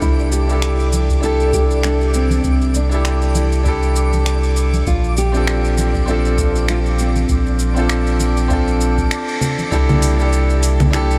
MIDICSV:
0, 0, Header, 1, 6, 480
1, 0, Start_track
1, 0, Tempo, 606061
1, 19, Time_signature, 4, 2, 24, 8
1, 8859, End_track
2, 0, Start_track
2, 0, Title_t, "Synth texture"
2, 0, Program_c, 0, 99
2, 0, Note_on_c, 0, 74, 74
2, 0, Note_on_c, 0, 86, 73
2, 7699, Note_on_c, 0, 67, 80
2, 7702, Note_on_c, 0, 81, 74
2, 7711, Note_off_c, 0, 86, 0
2, 7713, Note_off_c, 0, 74, 0
2, 8859, Note_off_c, 0, 67, 0
2, 8859, Note_off_c, 0, 81, 0
2, 8859, End_track
3, 0, Start_track
3, 0, Title_t, "Nylon-string guitar"
3, 0, Program_c, 1, 24
3, 16, Note_on_c, 1, 64, 93
3, 255, Note_off_c, 1, 64, 0
3, 259, Note_on_c, 1, 67, 91
3, 977, Note_off_c, 1, 67, 0
3, 981, Note_on_c, 1, 69, 108
3, 1219, Note_off_c, 1, 69, 0
3, 1222, Note_on_c, 1, 67, 97
3, 1286, Note_off_c, 1, 67, 0
3, 1464, Note_on_c, 1, 62, 90
3, 1704, Note_on_c, 1, 60, 90
3, 1708, Note_off_c, 1, 62, 0
3, 2185, Note_on_c, 1, 62, 87
3, 2196, Note_off_c, 1, 60, 0
3, 2630, Note_off_c, 1, 62, 0
3, 2662, Note_on_c, 1, 64, 75
3, 3589, Note_off_c, 1, 64, 0
3, 3859, Note_on_c, 1, 65, 89
3, 4100, Note_off_c, 1, 65, 0
3, 4103, Note_on_c, 1, 67, 97
3, 4789, Note_off_c, 1, 67, 0
3, 4827, Note_on_c, 1, 69, 111
3, 5304, Note_off_c, 1, 69, 0
3, 5307, Note_on_c, 1, 65, 91
3, 5371, Note_off_c, 1, 65, 0
3, 5549, Note_on_c, 1, 60, 83
3, 7192, Note_off_c, 1, 60, 0
3, 8859, End_track
4, 0, Start_track
4, 0, Title_t, "Grand piano"
4, 0, Program_c, 2, 0
4, 0, Note_on_c, 2, 62, 78
4, 0, Note_on_c, 2, 64, 72
4, 0, Note_on_c, 2, 67, 68
4, 0, Note_on_c, 2, 69, 87
4, 352, Note_off_c, 2, 62, 0
4, 359, Note_off_c, 2, 64, 0
4, 365, Note_off_c, 2, 67, 0
4, 372, Note_off_c, 2, 69, 0
4, 376, Note_on_c, 2, 62, 77
4, 388, Note_on_c, 2, 64, 75
4, 401, Note_on_c, 2, 67, 71
4, 414, Note_on_c, 2, 69, 87
4, 943, Note_off_c, 2, 62, 0
4, 951, Note_off_c, 2, 64, 0
4, 955, Note_on_c, 2, 62, 90
4, 957, Note_off_c, 2, 67, 0
4, 964, Note_off_c, 2, 69, 0
4, 969, Note_on_c, 2, 64, 80
4, 981, Note_on_c, 2, 67, 87
4, 995, Note_on_c, 2, 69, 100
4, 2271, Note_off_c, 2, 62, 0
4, 2277, Note_off_c, 2, 64, 0
4, 2283, Note_off_c, 2, 67, 0
4, 2290, Note_off_c, 2, 69, 0
4, 2293, Note_on_c, 2, 62, 83
4, 2306, Note_on_c, 2, 64, 75
4, 2320, Note_on_c, 2, 67, 74
4, 2332, Note_on_c, 2, 69, 84
4, 2863, Note_off_c, 2, 62, 0
4, 2869, Note_off_c, 2, 64, 0
4, 2876, Note_off_c, 2, 67, 0
4, 2877, Note_on_c, 2, 62, 91
4, 2882, Note_off_c, 2, 69, 0
4, 2890, Note_on_c, 2, 64, 83
4, 2903, Note_on_c, 2, 67, 80
4, 2916, Note_on_c, 2, 69, 106
4, 3836, Note_off_c, 2, 62, 0
4, 3842, Note_off_c, 2, 64, 0
4, 3848, Note_off_c, 2, 67, 0
4, 3855, Note_off_c, 2, 69, 0
4, 4212, Note_on_c, 2, 60, 80
4, 4225, Note_on_c, 2, 62, 78
4, 4238, Note_on_c, 2, 65, 76
4, 4252, Note_on_c, 2, 69, 88
4, 4783, Note_off_c, 2, 60, 0
4, 4789, Note_off_c, 2, 62, 0
4, 4795, Note_off_c, 2, 65, 0
4, 4796, Note_on_c, 2, 60, 96
4, 4802, Note_off_c, 2, 69, 0
4, 4809, Note_on_c, 2, 62, 84
4, 4823, Note_on_c, 2, 65, 87
4, 4835, Note_on_c, 2, 69, 101
4, 6111, Note_off_c, 2, 60, 0
4, 6117, Note_off_c, 2, 62, 0
4, 6124, Note_off_c, 2, 65, 0
4, 6130, Note_off_c, 2, 69, 0
4, 6130, Note_on_c, 2, 60, 76
4, 6143, Note_on_c, 2, 62, 72
4, 6155, Note_on_c, 2, 65, 78
4, 6169, Note_on_c, 2, 69, 91
4, 6701, Note_off_c, 2, 60, 0
4, 6708, Note_off_c, 2, 62, 0
4, 6714, Note_off_c, 2, 65, 0
4, 6716, Note_on_c, 2, 60, 93
4, 6721, Note_off_c, 2, 69, 0
4, 6730, Note_on_c, 2, 62, 86
4, 6742, Note_on_c, 2, 65, 89
4, 6756, Note_on_c, 2, 69, 103
4, 7675, Note_off_c, 2, 60, 0
4, 7677, Note_off_c, 2, 62, 0
4, 7688, Note_off_c, 2, 65, 0
4, 7689, Note_on_c, 2, 62, 101
4, 7694, Note_on_c, 2, 64, 98
4, 7695, Note_off_c, 2, 69, 0
4, 7702, Note_on_c, 2, 67, 91
4, 7707, Note_on_c, 2, 69, 113
4, 8015, Note_off_c, 2, 62, 0
4, 8018, Note_off_c, 2, 64, 0
4, 8022, Note_off_c, 2, 67, 0
4, 8025, Note_off_c, 2, 69, 0
4, 8052, Note_on_c, 2, 62, 84
4, 8065, Note_on_c, 2, 64, 75
4, 8079, Note_on_c, 2, 67, 77
4, 8092, Note_on_c, 2, 69, 91
4, 8622, Note_off_c, 2, 62, 0
4, 8629, Note_off_c, 2, 64, 0
4, 8636, Note_off_c, 2, 67, 0
4, 8638, Note_on_c, 2, 62, 96
4, 8642, Note_off_c, 2, 69, 0
4, 8651, Note_on_c, 2, 64, 87
4, 8663, Note_on_c, 2, 67, 89
4, 8675, Note_on_c, 2, 69, 112
4, 8859, Note_off_c, 2, 62, 0
4, 8859, Note_off_c, 2, 64, 0
4, 8859, Note_off_c, 2, 67, 0
4, 8859, Note_off_c, 2, 69, 0
4, 8859, End_track
5, 0, Start_track
5, 0, Title_t, "Analog synth bass"
5, 0, Program_c, 3, 38
5, 17, Note_on_c, 3, 36, 90
5, 1905, Note_off_c, 3, 36, 0
5, 1936, Note_on_c, 3, 36, 93
5, 3824, Note_off_c, 3, 36, 0
5, 3856, Note_on_c, 3, 34, 103
5, 5744, Note_off_c, 3, 34, 0
5, 5777, Note_on_c, 3, 34, 99
5, 7218, Note_off_c, 3, 34, 0
5, 7699, Note_on_c, 3, 36, 96
5, 8859, Note_off_c, 3, 36, 0
5, 8859, End_track
6, 0, Start_track
6, 0, Title_t, "Drums"
6, 14, Note_on_c, 9, 82, 42
6, 16, Note_on_c, 9, 36, 109
6, 94, Note_off_c, 9, 82, 0
6, 95, Note_off_c, 9, 36, 0
6, 151, Note_on_c, 9, 82, 20
6, 230, Note_off_c, 9, 82, 0
6, 254, Note_on_c, 9, 82, 72
6, 333, Note_off_c, 9, 82, 0
6, 391, Note_on_c, 9, 82, 29
6, 470, Note_off_c, 9, 82, 0
6, 493, Note_on_c, 9, 26, 85
6, 494, Note_on_c, 9, 82, 41
6, 572, Note_off_c, 9, 26, 0
6, 573, Note_off_c, 9, 82, 0
6, 631, Note_on_c, 9, 82, 20
6, 710, Note_off_c, 9, 82, 0
6, 734, Note_on_c, 9, 82, 78
6, 739, Note_on_c, 9, 63, 75
6, 813, Note_off_c, 9, 82, 0
6, 818, Note_off_c, 9, 63, 0
6, 871, Note_on_c, 9, 36, 63
6, 871, Note_on_c, 9, 82, 32
6, 950, Note_off_c, 9, 36, 0
6, 951, Note_off_c, 9, 82, 0
6, 975, Note_on_c, 9, 82, 45
6, 1054, Note_off_c, 9, 82, 0
6, 1111, Note_on_c, 9, 82, 20
6, 1190, Note_off_c, 9, 82, 0
6, 1215, Note_on_c, 9, 36, 100
6, 1215, Note_on_c, 9, 82, 70
6, 1294, Note_off_c, 9, 36, 0
6, 1294, Note_off_c, 9, 82, 0
6, 1351, Note_on_c, 9, 82, 29
6, 1430, Note_off_c, 9, 82, 0
6, 1453, Note_on_c, 9, 26, 90
6, 1454, Note_on_c, 9, 82, 41
6, 1532, Note_off_c, 9, 26, 0
6, 1533, Note_off_c, 9, 82, 0
6, 1592, Note_on_c, 9, 82, 20
6, 1671, Note_off_c, 9, 82, 0
6, 1694, Note_on_c, 9, 82, 73
6, 1773, Note_off_c, 9, 82, 0
6, 1827, Note_on_c, 9, 63, 86
6, 1831, Note_on_c, 9, 82, 31
6, 1906, Note_off_c, 9, 63, 0
6, 1910, Note_off_c, 9, 82, 0
6, 1934, Note_on_c, 9, 82, 42
6, 1935, Note_on_c, 9, 36, 101
6, 2013, Note_off_c, 9, 82, 0
6, 2014, Note_off_c, 9, 36, 0
6, 2070, Note_on_c, 9, 82, 19
6, 2149, Note_off_c, 9, 82, 0
6, 2174, Note_on_c, 9, 82, 70
6, 2253, Note_off_c, 9, 82, 0
6, 2310, Note_on_c, 9, 82, 28
6, 2389, Note_off_c, 9, 82, 0
6, 2415, Note_on_c, 9, 26, 88
6, 2415, Note_on_c, 9, 82, 41
6, 2494, Note_off_c, 9, 26, 0
6, 2495, Note_off_c, 9, 82, 0
6, 2549, Note_on_c, 9, 82, 20
6, 2628, Note_off_c, 9, 82, 0
6, 2654, Note_on_c, 9, 82, 73
6, 2656, Note_on_c, 9, 63, 81
6, 2734, Note_off_c, 9, 82, 0
6, 2735, Note_off_c, 9, 63, 0
6, 2790, Note_on_c, 9, 82, 31
6, 2869, Note_off_c, 9, 82, 0
6, 2896, Note_on_c, 9, 82, 41
6, 2897, Note_on_c, 9, 36, 87
6, 2975, Note_off_c, 9, 82, 0
6, 2976, Note_off_c, 9, 36, 0
6, 3031, Note_on_c, 9, 82, 19
6, 3110, Note_off_c, 9, 82, 0
6, 3135, Note_on_c, 9, 82, 75
6, 3215, Note_off_c, 9, 82, 0
6, 3272, Note_on_c, 9, 82, 31
6, 3277, Note_on_c, 9, 63, 57
6, 3351, Note_off_c, 9, 82, 0
6, 3356, Note_off_c, 9, 63, 0
6, 3375, Note_on_c, 9, 26, 84
6, 3376, Note_on_c, 9, 82, 39
6, 3454, Note_off_c, 9, 26, 0
6, 3455, Note_off_c, 9, 82, 0
6, 3512, Note_on_c, 9, 82, 21
6, 3592, Note_off_c, 9, 82, 0
6, 3615, Note_on_c, 9, 82, 70
6, 3694, Note_off_c, 9, 82, 0
6, 3751, Note_on_c, 9, 63, 81
6, 3752, Note_on_c, 9, 82, 29
6, 3830, Note_off_c, 9, 63, 0
6, 3831, Note_off_c, 9, 82, 0
6, 3856, Note_on_c, 9, 82, 38
6, 3857, Note_on_c, 9, 36, 104
6, 3935, Note_off_c, 9, 82, 0
6, 3936, Note_off_c, 9, 36, 0
6, 3992, Note_on_c, 9, 82, 19
6, 4071, Note_off_c, 9, 82, 0
6, 4095, Note_on_c, 9, 82, 69
6, 4174, Note_off_c, 9, 82, 0
6, 4232, Note_on_c, 9, 82, 29
6, 4311, Note_off_c, 9, 82, 0
6, 4336, Note_on_c, 9, 26, 98
6, 4336, Note_on_c, 9, 82, 42
6, 4415, Note_off_c, 9, 26, 0
6, 4416, Note_off_c, 9, 82, 0
6, 4473, Note_on_c, 9, 82, 20
6, 4552, Note_off_c, 9, 82, 0
6, 4575, Note_on_c, 9, 82, 75
6, 4582, Note_on_c, 9, 63, 80
6, 4655, Note_off_c, 9, 82, 0
6, 4662, Note_off_c, 9, 63, 0
6, 4711, Note_on_c, 9, 82, 29
6, 4713, Note_on_c, 9, 36, 63
6, 4790, Note_off_c, 9, 82, 0
6, 4792, Note_off_c, 9, 36, 0
6, 4814, Note_on_c, 9, 82, 39
6, 4893, Note_off_c, 9, 82, 0
6, 4952, Note_on_c, 9, 82, 19
6, 5031, Note_off_c, 9, 82, 0
6, 5055, Note_on_c, 9, 82, 69
6, 5056, Note_on_c, 9, 36, 94
6, 5135, Note_off_c, 9, 82, 0
6, 5136, Note_off_c, 9, 36, 0
6, 5193, Note_on_c, 9, 82, 32
6, 5272, Note_off_c, 9, 82, 0
6, 5294, Note_on_c, 9, 26, 90
6, 5295, Note_on_c, 9, 82, 38
6, 5374, Note_off_c, 9, 26, 0
6, 5374, Note_off_c, 9, 82, 0
6, 5432, Note_on_c, 9, 82, 19
6, 5511, Note_off_c, 9, 82, 0
6, 5534, Note_on_c, 9, 82, 68
6, 5614, Note_off_c, 9, 82, 0
6, 5669, Note_on_c, 9, 82, 27
6, 5671, Note_on_c, 9, 63, 78
6, 5748, Note_off_c, 9, 82, 0
6, 5750, Note_off_c, 9, 63, 0
6, 5773, Note_on_c, 9, 82, 40
6, 5776, Note_on_c, 9, 36, 110
6, 5852, Note_off_c, 9, 82, 0
6, 5855, Note_off_c, 9, 36, 0
6, 5911, Note_on_c, 9, 82, 19
6, 5990, Note_off_c, 9, 82, 0
6, 6013, Note_on_c, 9, 82, 74
6, 6092, Note_off_c, 9, 82, 0
6, 6149, Note_on_c, 9, 82, 29
6, 6229, Note_off_c, 9, 82, 0
6, 6252, Note_on_c, 9, 26, 97
6, 6253, Note_on_c, 9, 82, 39
6, 6332, Note_off_c, 9, 26, 0
6, 6332, Note_off_c, 9, 82, 0
6, 6389, Note_on_c, 9, 82, 21
6, 6468, Note_off_c, 9, 82, 0
6, 6494, Note_on_c, 9, 82, 74
6, 6495, Note_on_c, 9, 63, 71
6, 6573, Note_off_c, 9, 82, 0
6, 6574, Note_off_c, 9, 63, 0
6, 6629, Note_on_c, 9, 82, 32
6, 6708, Note_off_c, 9, 82, 0
6, 6735, Note_on_c, 9, 82, 40
6, 6736, Note_on_c, 9, 36, 89
6, 6814, Note_off_c, 9, 82, 0
6, 6815, Note_off_c, 9, 36, 0
6, 6873, Note_on_c, 9, 82, 20
6, 6952, Note_off_c, 9, 82, 0
6, 6976, Note_on_c, 9, 82, 67
6, 7055, Note_off_c, 9, 82, 0
6, 7113, Note_on_c, 9, 36, 56
6, 7113, Note_on_c, 9, 82, 30
6, 7115, Note_on_c, 9, 63, 54
6, 7192, Note_off_c, 9, 36, 0
6, 7192, Note_off_c, 9, 82, 0
6, 7194, Note_off_c, 9, 63, 0
6, 7216, Note_on_c, 9, 26, 93
6, 7217, Note_on_c, 9, 82, 40
6, 7296, Note_off_c, 9, 26, 0
6, 7296, Note_off_c, 9, 82, 0
6, 7353, Note_on_c, 9, 82, 21
6, 7432, Note_off_c, 9, 82, 0
6, 7456, Note_on_c, 9, 64, 87
6, 7459, Note_on_c, 9, 82, 74
6, 7535, Note_off_c, 9, 64, 0
6, 7538, Note_off_c, 9, 82, 0
6, 7594, Note_on_c, 9, 63, 80
6, 7594, Note_on_c, 9, 82, 28
6, 7673, Note_off_c, 9, 63, 0
6, 7674, Note_off_c, 9, 82, 0
6, 7698, Note_on_c, 9, 36, 109
6, 7700, Note_on_c, 9, 82, 44
6, 7777, Note_off_c, 9, 36, 0
6, 7779, Note_off_c, 9, 82, 0
6, 7836, Note_on_c, 9, 64, 76
6, 7837, Note_on_c, 9, 82, 21
6, 7915, Note_off_c, 9, 64, 0
6, 7916, Note_off_c, 9, 82, 0
6, 7938, Note_on_c, 9, 46, 89
6, 7939, Note_on_c, 9, 82, 79
6, 8017, Note_off_c, 9, 46, 0
6, 8018, Note_off_c, 9, 82, 0
6, 8075, Note_on_c, 9, 82, 31
6, 8154, Note_off_c, 9, 82, 0
6, 8179, Note_on_c, 9, 82, 44
6, 8259, Note_off_c, 9, 82, 0
6, 8315, Note_on_c, 9, 82, 21
6, 8394, Note_off_c, 9, 82, 0
6, 8418, Note_on_c, 9, 46, 90
6, 8419, Note_on_c, 9, 82, 80
6, 8497, Note_off_c, 9, 46, 0
6, 8498, Note_off_c, 9, 82, 0
6, 8554, Note_on_c, 9, 36, 67
6, 8555, Note_on_c, 9, 64, 76
6, 8556, Note_on_c, 9, 82, 33
6, 8633, Note_off_c, 9, 36, 0
6, 8634, Note_off_c, 9, 64, 0
6, 8635, Note_off_c, 9, 82, 0
6, 8660, Note_on_c, 9, 26, 82
6, 8661, Note_on_c, 9, 82, 45
6, 8739, Note_off_c, 9, 26, 0
6, 8740, Note_off_c, 9, 82, 0
6, 8798, Note_on_c, 9, 82, 23
6, 8859, Note_off_c, 9, 82, 0
6, 8859, End_track
0, 0, End_of_file